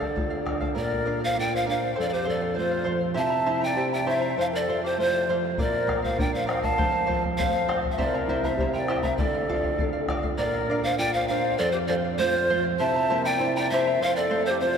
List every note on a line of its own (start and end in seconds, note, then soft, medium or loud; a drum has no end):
0.00 0.72 D3 medium
0.00 0.47 A4 medium
0.00 0.14 A4 soft
0.00 0.47 D5 medium
0.00 0.15 D5 medium
0.00 0.16 F5 medium
0.00 bombo low soft
0.15 0.75 A3 soft
0.15 0.75 D4 soft
0.15 0.75 F4 soft
0.15 0.31 A4 medium
0.15 0.31 D5 medium
0.15 0.29 F5 medium
0.15 bombo low medium
0.30 0.45 D5 soft
0.30 0.45 F5 medium
0.45 0.61 A4 medium
0.45 0.60 D5 medium
0.45 0.59 F5 medium
0.45 bombo rim medium
0.45 bombo low medium
0.61 0.74 A4 medium
0.61 0.74 D5 medium
0.61 0.75 F5 medium
0.61 bombo low medium
0.75 1.93 A#2 medium
0.75 0.91 A#4 medium
0.75 0.91 D5 medium
0.75 1.19 D5 medium
0.75 0.90 F5 medium
0.79 1.20 A#4 medium
0.91 1.05 D5 soft
0.91 1.06 F5 soft
1.05 1.36 D4 medium
1.05 1.21 A#4 medium
1.05 1.20 D5 medium
1.05 1.19 F5 medium
1.20 1.34 D5 soft
1.20 1.34 F5 soft
1.20 1.37 F5 medium
1.25 1.37 C5 medium
1.34 1.66 F4 medium
1.34 1.51 A#4 medium
1.34 1.51 D5 medium
1.34 1.56 D5 medium
1.34 1.49 F5 medium
1.40 1.57 G5 loud
1.51 1.68 C5 medium
1.51 1.65 D5 soft
1.51 1.66 F5 medium
1.56 1.69 F5 medium
1.66 1.96 D4 medium
1.66 1.81 A#4 medium
1.66 1.73 C#5 medium
1.66 1.80 D5 medium
1.66 1.79 F5 medium
1.66 1.96 F5 medium
1.72 1.96 C5 medium
1.80 1.95 D5 soft
1.80 1.95 F5 soft
1.96 3.15 F2 medium
1.96 2.11 A4 medium
1.96 2.06 A4 medium
1.96 2.11 C5 medium
1.96 2.09 F5 medium
2.00 2.09 D5 medium
2.07 2.14 A4 soft
2.07 2.15 D5 medium
2.07 2.24 F5 medium
2.12 2.28 G4 medium
2.12 2.24 C5 soft
2.12 2.30 C5 medium
2.25 2.57 F3 medium
2.25 2.41 A4 medium
2.25 2.56 A4 medium
2.25 2.41 C5 medium
2.25 2.40 F5 medium
2.29 2.57 D5 medium
2.41 2.53 C5 soft
2.41 2.55 F5 medium
2.54 2.87 A3 medium
2.54 2.99 F4 medium
2.54 2.71 A4 medium
2.54 2.71 C5 medium
2.54 2.99 C5 medium
2.54 2.70 F5 medium
2.71 2.83 C5 soft
2.71 2.85 F5 medium
2.84 3.16 F3 medium
2.84 3.01 A4 medium
2.84 3.01 C5 medium
2.84 2.99 F5 medium
3.01 3.13 C5 soft
3.01 3.14 F5 soft
3.14 4.34 C3 medium
3.14 3.30 E4 medium
3.14 3.31 G4 medium
3.14 3.31 C5 medium
3.14 3.30 E5 medium
3.14 3.23 F5 medium
3.14 3.65 A5 loud
3.14 3.29 A#5 medium
3.22 3.63 E5 medium
3.30 3.45 E4 soft
3.30 3.45 E5 soft
3.30 3.46 A#5 medium
3.46 3.61 E4 medium
3.46 3.76 E4 medium
3.46 3.62 G4 medium
3.46 3.62 C5 medium
3.46 3.60 E5 medium
3.46 3.60 A#5 medium
3.61 3.76 E4 soft
3.61 3.76 E5 medium
3.61 3.67 E5 medium
3.61 3.93 G5 loud
3.61 3.77 A#5 soft
3.66 3.92 D5 medium
3.76 3.92 E4 medium
3.76 4.06 G4 medium
3.76 3.92 C5 medium
3.76 3.92 E5 medium
3.76 3.92 A#5 medium
3.93 4.05 E4 soft
3.93 4.11 D5 medium
3.93 4.06 E5 soft
3.93 4.10 G5 medium
3.93 4.06 A#5 medium
4.06 4.22 E4 medium
4.06 4.36 E4 medium
4.06 4.22 G4 medium
4.06 4.22 C5 medium
4.06 4.15 C#5 medium
4.06 4.21 E5 medium
4.06 4.38 E5 medium
4.06 4.20 A#5 medium
4.14 4.36 C5 medium
4.21 4.37 E4 soft
4.21 4.37 E5 soft
4.21 4.37 A#5 soft
4.37 5.54 F2 medium
4.37 4.52 A4 medium
4.37 4.43 C5 medium
4.37 4.53 C5 medium
4.37 4.52 F5 medium
4.37 4.46 F5 medium
4.52 4.58 A#4 medium
4.52 4.68 C5 soft
4.52 4.82 D5 medium
4.52 4.68 F5 medium
4.57 4.80 A4 medium
4.68 4.97 F3 medium
4.68 4.83 A4 medium
4.68 4.83 C5 medium
4.68 4.83 F5 medium
4.83 4.97 G4 medium
4.83 4.98 C5 medium
4.83 4.99 C5 soft
4.83 4.98 F5 medium
4.98 5.27 A3 medium
4.98 5.40 F4 medium
4.98 5.13 A4 medium
4.98 5.14 C5 medium
4.98 5.33 C5 medium
4.98 5.13 F5 medium
5.14 5.28 C5 soft
5.14 5.29 F5 medium
5.28 5.57 F3 medium
5.28 5.43 A4 medium
5.28 5.44 C5 medium
5.28 5.43 F5 medium
5.45 5.59 C5 soft
5.45 5.58 F5 soft
5.58 6.75 A#2 medium
5.58 5.73 A#4 medium
5.58 6.00 A#4 medium
5.58 5.73 D5 medium
5.58 6.01 D5 medium
5.58 5.72 F5 medium
5.58 bombo low medium
5.73 5.86 D5 soft
5.73 5.87 F5 medium
5.87 6.17 A#3 medium
5.87 6.02 A#4 medium
5.87 6.02 D5 medium
5.87 6.01 F5 medium
5.87 bombo rim soft
5.87 bombo low medium
6.02 6.22 C5 medium
6.02 6.17 D5 soft
6.02 6.18 F5 soft
6.02 6.21 F5 medium
6.02 bombo low medium
6.18 6.47 D4 medium
6.18 6.33 A#4 medium
6.18 6.33 D5 medium
6.18 6.34 D5 medium
6.18 6.31 F5 medium
6.18 6.34 G5 medium
6.18 bombo low medium
6.33 6.47 C5 medium
6.33 6.45 D5 soft
6.33 6.46 F5 soft
6.33 6.47 F5 medium
6.46 6.77 A#3 medium
6.46 6.62 A#4 medium
6.46 6.66 C5 medium
6.46 6.62 D5 medium
6.46 6.61 F5 medium
6.46 6.64 F5 medium
6.46 bombo rim medium
6.62 6.78 D5 soft
6.62 6.77 F5 soft
6.62 7.17 F5 medium
6.62 7.23 A5 loud
6.62 bombo low medium
6.78 7.95 F2 medium
6.78 6.93 A4 medium
6.78 6.91 C5 medium
6.78 6.90 F5 medium
6.78 bombo low medium
6.91 7.06 C5 soft
6.91 7.05 F5 soft
7.06 7.38 F3 medium
7.06 7.22 A4 medium
7.06 7.23 C5 medium
7.06 7.21 F5 medium
7.06 bombo low medium
7.22 7.37 C5 soft
7.22 7.37 F5 soft
7.22 bombo low medium
7.38 7.68 A3 medium
7.38 7.53 A4 medium
7.38 7.53 C5 medium
7.38 7.45 C#5 medium
7.38 7.80 F5 medium
7.38 7.52 F5 medium
7.38 bombo low medium
7.44 7.81 C5 medium
7.54 7.67 C5 soft
7.54 7.67 F5 medium
7.68 7.97 F3 medium
7.68 7.83 A4 medium
7.68 7.83 C5 medium
7.68 7.81 F5 medium
7.68 bombo rim medium
7.82 7.97 C5 soft
7.82 7.98 F5 soft
7.82 bombo low medium
7.92 8.01 C5 medium
7.92 8.00 E5 medium
7.98 9.15 C3 medium
7.98 8.14 E4 medium
7.98 8.13 G4 medium
7.98 8.13 C5 medium
7.98 8.06 C5 medium
7.98 8.45 D5 medium
7.98 8.13 E5 medium
7.98 8.13 A#5 medium
7.98 bombo low medium
8.05 8.48 A#4 medium
8.14 8.28 E4 soft
8.14 8.28 E5 soft
8.14 8.28 A#5 medium
8.28 8.57 E4 medium
8.28 8.44 E4 medium
8.28 8.44 G4 medium
8.28 8.44 C5 medium
8.28 8.44 E5 medium
8.28 8.44 A#5 medium
8.28 bombo low soft
8.43 8.59 E4 soft
8.43 8.75 C5 medium
8.43 8.73 E5 medium
8.43 8.59 E5 soft
8.43 8.59 A#5 soft
8.43 bombo low medium
8.57 8.74 E4 medium
8.57 8.87 G4 medium
8.57 8.74 C5 medium
8.57 8.74 E5 medium
8.57 8.72 A#5 medium
8.57 bombo low medium
8.73 8.88 E4 soft
8.73 9.08 D5 medium
8.73 8.88 E5 soft
8.73 9.04 G5 medium
8.73 8.89 A#5 medium
8.88 9.18 E4 medium
8.88 9.03 E4 medium
8.88 9.04 G4 medium
8.88 9.04 C5 medium
8.88 9.02 E5 medium
8.88 9.02 A#5 medium
8.88 bombo rim medium
9.02 9.18 E4 soft
9.02 9.19 C5 medium
9.02 9.16 E5 medium
9.02 9.19 E5 soft
9.02 9.19 A#5 soft
9.02 bombo low medium
9.17 10.35 D3 medium
9.17 9.34 A4 medium
9.17 10.06 A4 medium
9.17 10.04 D5 medium
9.17 9.34 D5 medium
9.17 9.33 F5 medium
9.17 bombo low medium
9.34 9.48 D5 soft
9.34 9.48 F5 medium
9.49 9.78 F4 medium
9.49 9.64 A4 medium
9.49 9.63 D5 medium
9.49 9.63 F5 medium
9.49 bombo low medium
9.64 9.78 D5 soft
9.64 9.79 F5 soft
9.64 bombo low medium
9.78 9.94 A4 soft
9.78 10.08 A4 medium
9.78 9.93 D5 medium
9.78 9.92 F5 medium
9.78 bombo low medium
9.93 10.08 D5 soft
9.93 10.08 F5 medium
10.08 10.38 F4 medium
10.08 10.24 A4 medium
10.08 10.23 D5 medium
10.08 10.22 F5 medium
10.08 bombo rim medium
10.08 bombo low soft
10.23 10.37 D5 soft
10.23 10.38 F5 medium
10.23 bombo low medium
10.38 11.55 A#2 medium
10.38 10.53 A#4 medium
10.38 10.44 C5 medium
10.38 10.81 D5 medium
10.38 10.53 D5 medium
10.38 10.52 F5 medium
10.43 10.81 A#4 medium
10.54 10.69 D5 soft
10.54 10.69 F5 medium
10.69 10.98 D4 medium
10.69 10.84 A#4 medium
10.69 10.85 D5 medium
10.69 10.83 F5 medium
10.84 10.98 C5 medium
10.84 10.99 D5 soft
10.84 10.97 F5 medium
10.84 10.99 F5 medium
10.98 11.28 F4 medium
10.98 11.15 A#4 medium
10.98 11.13 D5 medium
10.98 11.15 D5 medium
10.98 11.13 F5 medium
10.98 11.13 G5 loud
11.13 11.28 C5 medium
11.13 11.29 D5 soft
11.13 11.27 F5 medium
11.13 11.30 F5 medium
11.28 11.59 D4 medium
11.28 11.45 A#4 medium
11.28 11.60 C5 medium
11.28 11.45 D5 medium
11.28 11.59 F5 medium
11.28 11.44 F5 medium
11.45 11.59 D5 soft
11.45 11.59 F5 soft
11.58 12.76 F2 medium
11.58 11.72 A4 medium
11.58 11.74 A4 medium
11.58 11.75 C5 medium
11.58 11.71 D5 medium
11.58 11.73 F5 medium
11.72 11.79 G4 medium
11.72 11.78 C5 medium
11.72 11.89 F5 soft
11.76 11.88 C5 soft
11.87 12.18 F3 medium
11.87 11.95 A4 medium
11.87 12.04 A4 medium
11.87 12.04 C5 medium
11.87 11.94 D5 medium
11.87 12.03 F5 medium
12.04 12.18 C5 soft
12.04 12.19 F5 soft
12.18 12.49 A3 medium
12.18 12.62 F4 medium
12.18 12.34 A4 medium
12.18 12.61 C5 loud
12.18 12.35 C5 medium
12.18 12.34 F5 medium
12.35 12.49 C5 soft
12.35 12.49 F5 medium
12.49 12.79 F3 medium
12.49 12.65 A4 medium
12.49 12.65 C5 medium
12.49 12.63 F5 medium
12.64 12.78 C5 soft
12.64 12.79 F5 soft
12.79 13.97 C3 medium
12.79 12.95 E4 medium
12.79 12.95 G4 medium
12.79 12.95 C5 medium
12.79 12.95 E5 medium
12.79 13.28 E5 medium
12.79 13.26 A5 loud
12.79 12.95 A#5 medium
12.96 13.09 E4 soft
12.96 13.10 E5 soft
12.96 13.10 A#5 medium
13.10 13.40 A#3 medium
13.10 13.25 E4 medium
13.10 13.25 G4 medium
13.10 13.25 C5 medium
13.10 13.25 E5 medium
13.10 13.24 A#5 medium
13.25 13.39 E4 soft
13.25 13.56 D5 medium
13.25 13.40 E5 soft
13.25 13.55 G5 medium
13.25 13.40 A#5 soft
13.40 13.69 E4 medium
13.40 13.56 E4 medium
13.40 13.55 C5 medium
13.40 13.56 E5 medium
13.40 13.56 A#5 medium
13.56 13.72 E4 soft
13.56 13.71 D5 medium
13.56 13.72 E5 medium
13.56 13.69 G5 loud
13.56 13.71 A#5 medium
13.70 14.00 A#3 medium
13.70 13.87 E4 medium
13.70 13.87 G4 medium
13.70 14.03 C5 medium
13.70 13.87 C5 medium
13.70 14.04 E5 medium
13.70 13.86 E5 medium
13.74 13.86 A#5 medium
13.87 14.01 E4 soft
13.87 14.02 E5 soft
13.87 14.02 A#5 soft
13.99 14.78 F2 medium
13.99 14.16 A4 medium
13.99 14.16 C5 medium
13.99 14.20 C5 medium
13.99 14.17 F5 medium
13.99 14.15 F5 medium
14.16 14.51 A4 medium
14.16 14.29 C5 soft
14.16 14.47 D5 medium
14.16 14.30 F5 medium
14.30 14.60 A3 medium
14.30 14.46 A4 medium
14.30 14.45 C5 medium
14.30 14.44 F5 medium
14.45 14.59 C5 medium
14.45 14.61 C5 soft
14.45 14.61 F5 medium
14.50 14.62 G4 medium
14.60 14.78 C4 medium
14.60 14.78 F4 medium
14.60 14.76 A4 medium
14.60 14.78 C5 medium
14.60 14.77 C5 medium
14.60 14.76 F5 medium